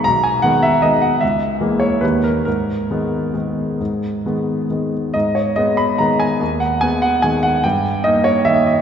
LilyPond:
<<
  \new Staff \with { instrumentName = "Grand piano" } { \time 3/4 \key gis \minor \tempo 4 = 144 ais''8 gis''8 fis''8 e''8 dis''8 fis''8 | e''4. cis''8 b'8 ais'8 | ais'2 gis'4~ | gis'2~ gis'8 r8 |
dis''8 cis''8 dis''8 b''8 ais''8 gis''8~ | gis''8 fis''8 gis''8 fis''8 gis''8 fis''8 | g''4 dis''8 cis''8 e''8 dis''8 | }
  \new Staff \with { instrumentName = "Grand piano" } { \clef bass \time 3/4 \key gis \minor b,,4 <dis gis b>4 <dis gis b>4 | cis,4 <e gis ais>4 <dis, dis g ais>4 | gis,4 <dis gis b>4 <dis gis b>4 | gis,4 <dis gis b>4 <dis gis b>4 |
gis,4 <gis b>4 <dis gis b>4 | dis,4 <gis b>4 <dis gis b>4 | g,4 <ais dis'>4 <dis ais dis'>4 | }
>>